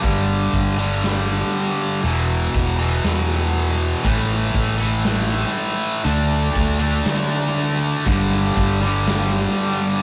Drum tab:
HH |o-o-o-o-|o-o-o-o-|o-o-o-o-|o-o-o-o-|
SD |----o---|----o---|-o--o---|----o---|
BD |o-o-----|--o-----|o-o-----|--o-----|

HH |o-o-o-o-|
SD |-o--o---|
BD |o-o-----|